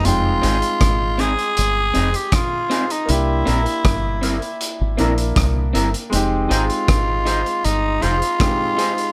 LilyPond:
<<
  \new Staff \with { instrumentName = "Tenor saxophone" } { \time 4/4 \key f \dorian \tempo 4 = 79 f'4. aes'4~ aes'16 g'16 f'8. ees'16 | e'2 r2 | r8 f'4. ees'8 f'4. | }
  \new Staff \with { instrumentName = "Clean electric guitar" } { \time 4/4 \key f \dorian r8 <c' ees' aes'>8 r8 <c' ees' aes'>8 r8 <c' ees' aes'>8 r8 <c' ees' aes'>8 | r8 <c' e' bes'>8 r8 <c' e' bes'>8 r8 <c' e' bes'>8 r8 <c' e' bes'>8 | r8 <ees' aes' c''>8 r8 <ees' aes' c''>8 r8 <ees' aes' c''>8 r8 <ees' aes' c''>8 | }
  \new Staff \with { instrumentName = "Grand piano" } { \time 4/4 \key f \dorian <g aes c' ees' g''>1 | <bes d' e' g'>2~ <bes d' e' g'>8 <bes d' e' bes'>4. | <aes c' ees' g'>2. <aes c' ees' g'>4 | }
  \new Staff \with { instrumentName = "Fingered electric bass" } { \clef bass \time 4/4 \key f \dorian f,,8 aes,,16 r16 aes,,8. r16 g,,8 f,,16 r4 r16 | c,8 bes,,16 r16 g,,8. r8 aes,,16 bes,,8 c,8 g,,16 r16 | f,,8 aes,,16 r16 aes,,8. r16 g,,8 f,,16 r4 r16 | }
  \new DrumStaff \with { instrumentName = "Drums" } \drummode { \time 4/4 hh8 hh16 hh16 <hh bd ss>8 hh16 hh16 hh8 hh16 hh16 <hh bd ss>8 hh16 hh16 | hh8 hh16 hh16 <hh bd ss>8 hh16 hh16 hh8 hh16 hh16 <hh bd ss>8 hh16 hh16 | hh8 hh16 hh16 <hh bd ss>8 hh16 hh16 hh8 hh16 hh16 <hh bd ss>8 hh16 hh16 | }
>>